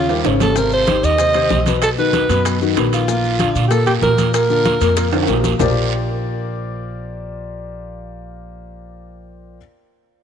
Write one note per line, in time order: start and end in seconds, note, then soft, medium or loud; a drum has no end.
0.00 0.22 D#2 medium
0.00 0.22 F4 loud
0.09 0.22 G3 medium
0.09 0.22 G4 medium
0.09 0.23 A#4 medium
0.09 high bongo soft
0.09 high conga soft
0.09 high timbale medium
0.09 maracas soft
0.25 0.98 G#1 medium
0.25 0.51 C#3 medium
0.25 0.51 C#4 medium
0.25 0.52 C#5 medium
0.25 high bongo soft
0.25 low bongo medium
0.25 high conga soft
0.25 high timbale medium
0.25 short guiro medium
0.25 maracas soft
0.40 0.59 A4 medium
0.40 high bongo soft
0.40 high conga medium
0.40 low timbale loud
0.40 short guiro medium
0.40 maracas medium
0.56 0.82 C3 medium
0.56 0.82 C4 medium
0.56 0.73 A#4 medium
0.56 0.83 C5 medium
0.56 high bongo medium
0.56 long guiro medium
0.56 maracas medium
0.72 1.06 C5 medium
0.72 high bongo soft
0.72 high conga soft
0.72 maracas soft
0.87 1.14 D#3 medium
0.87 1.14 D#4 medium
0.87 1.14 G4 medium
0.87 high bongo medium
0.87 high conga medium
0.87 high timbale medium
0.87 low timbale medium
0.87 short guiro medium
0.87 maracas soft
1.03 1.47 D#2 medium
1.03 1.67 D#5 loud
1.03 short guiro medium
1.03 maracas medium
1.18 1.32 C3 medium
1.18 1.32 C4 medium
1.18 1.33 C5 medium
1.18 high bongo medium
1.18 high conga soft
1.18 high timbale medium
1.18 long guiro medium
1.18 maracas medium
1.34 1.61 C3 medium
1.34 1.61 C4 medium
1.34 1.61 C5 medium
1.34 high bongo soft
1.34 high conga soft
1.34 high timbale loud
1.34 maracas soft
1.50 2.24 B1 medium
1.50 high bongo soft
1.50 low bongo medium
1.50 high conga medium
1.50 low timbale medium
1.50 short guiro medium
1.50 maracas soft
1.66 1.93 B2 medium
1.66 1.93 B3 medium
1.66 1.93 B4 medium
1.66 high bongo soft
1.66 high conga medium
1.66 high timbale medium
1.66 short guiro medium
1.66 maracas medium
1.82 1.90 A4 medium
1.82 high bongo medium
1.82 high conga soft
1.82 high timbale medium
1.82 long guiro medium
1.82 maracas medium
1.98 2.24 D#3 medium
1.98 2.24 D#4 medium
1.98 2.24 F#4 medium
1.98 2.58 B4 medium
1.98 high bongo soft
1.98 high conga soft
1.98 maracas soft
2.13 high bongo medium
2.13 high conga medium
2.13 high timbale medium
2.13 low timbale medium
2.13 short guiro medium
2.13 maracas soft
2.29 2.73 F#2 medium
2.29 2.55 B2 medium
2.29 2.56 B3 medium
2.29 2.56 B4 medium
2.29 high timbale medium
2.29 short guiro medium
2.29 maracas medium
2.45 high bongo medium
2.45 high conga soft
2.45 high timbale medium
2.45 long guiro medium
2.45 maracas medium
2.60 2.74 D#3 medium
2.60 2.74 D#4 medium
2.60 2.74 F#4 medium
2.60 high bongo soft
2.60 high conga soft
2.60 maracas soft
2.76 3.50 A#1 medium
2.76 3.02 D#3 medium
2.76 3.03 B3 medium
2.76 3.03 B4 medium
2.76 high bongo soft
2.76 low bongo medium
2.76 high conga soft
2.76 high timbale medium
2.76 low timbale medium
2.76 short guiro medium
2.76 maracas soft
2.93 3.64 F4 medium
2.93 high bongo soft
2.93 high timbale medium
2.93 short guiro medium
2.93 maracas medium
3.08 3.34 A#2 medium
3.08 3.34 A#3 medium
3.08 3.34 A#4 medium
3.08 high bongo medium
3.08 high conga soft
3.08 long guiro medium
3.08 maracas medium
3.24 high bongo soft
3.24 high conga soft
3.24 maracas soft
3.39 3.65 D3 medium
3.39 3.66 D4 medium
3.39 3.66 F4 medium
3.39 high bongo medium
3.39 high conga medium
3.39 high timbale medium
3.39 low timbale medium
3.39 short guiro medium
3.39 maracas soft
3.55 3.99 A#2 loud
3.55 short guiro medium
3.55 maracas medium
3.68 3.84 A#2 medium
3.68 3.84 A#3 medium
3.68 3.72 G4 medium
3.68 3.86 A4 loud
3.68 3.84 A#4 medium
3.68 high bongo medium
3.68 high conga soft
3.68 high timbale medium
3.68 long guiro medium
3.68 maracas medium
3.86 4.12 A#2 medium
3.86 4.12 A#3 medium
3.86 3.94 G4 medium
3.86 4.13 A#4 medium
3.86 high bongo soft
3.86 high conga soft
3.86 high timbale medium
3.86 maracas soft
4.02 4.75 A#2 medium
4.02 4.32 A#4 loud
4.02 high bongo soft
4.02 low bongo medium
4.02 high conga medium
4.02 low timbale medium
4.02 short guiro medium
4.02 maracas soft
4.18 4.44 A#2 medium
4.18 4.44 A#3 medium
4.18 4.44 A#4 medium
4.18 high bongo soft
4.18 high conga medium
4.18 high timbale medium
4.18 short guiro medium
4.18 maracas medium
4.34 5.25 A#4 loud
4.34 high bongo medium
4.34 high conga soft
4.34 high timbale medium
4.34 long guiro medium
4.34 maracas medium
4.50 4.75 D3 medium
4.50 4.75 D4 medium
4.50 4.76 F4 medium
4.50 high bongo soft
4.50 high conga soft
4.50 maracas soft
4.65 high bongo medium
4.65 high conga medium
4.65 high timbale medium
4.65 low timbale medium
4.65 short guiro medium
4.65 maracas soft
4.81 5.25 F2 medium
4.81 5.07 A#2 medium
4.81 5.07 A#3 medium
4.81 5.07 A#4 medium
4.81 high timbale medium
4.81 short guiro medium
4.81 maracas medium
4.97 high bongo medium
4.97 high conga soft
4.97 high timbale medium
4.97 long guiro medium
4.97 maracas medium
5.12 5.25 D3 medium
5.12 5.25 D4 medium
5.12 5.26 F4 medium
5.12 high conga soft
5.12 high timbale loud
5.12 maracas soft
5.23 high timbale medium
5.28 5.56 A#1 medium
5.28 5.54 A#2 medium
5.28 5.54 A#3 medium
5.28 5.54 A#4 medium
5.28 low bongo loud
5.28 high conga soft
5.28 short guiro medium
5.28 maracas soft
5.33 low timbale loud
5.44 low bongo medium
5.44 high conga medium
5.44 low timbale medium
5.44 short guiro medium
5.44 maracas medium
5.59 9.57 A#1 medium
5.59 9.57 A#3 medium
5.59 9.57 F4 medium
5.59 9.57 G4 medium
5.59 9.57 A#4 medium
5.59 9.57 C5 medium
5.59 9.58 D5 medium
5.59 low bongo loud
5.59 low conga medium
5.59 low timbale medium
5.59 long guiro medium
5.59 maracas medium